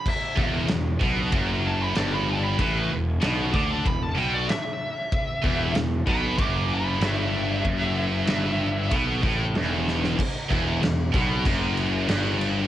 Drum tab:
CC |x---------------|----------------|----------------|----------------|
RD |----b---b---b---|b---b---b---b---|b---b---b---b---|b---b---b---b---|
SD |----o-------o---|----o-------o---|----o-------o---|----o-------o-oo|
BD |o-o---o-o-------|o-----o-o-------|o-o---o-o-------|o-------o-o-----|

CC |x-x-x-x-x-x-x-x-|
RD |----------------|
SD |----o-------o---|
BD |o-o---o-o-------|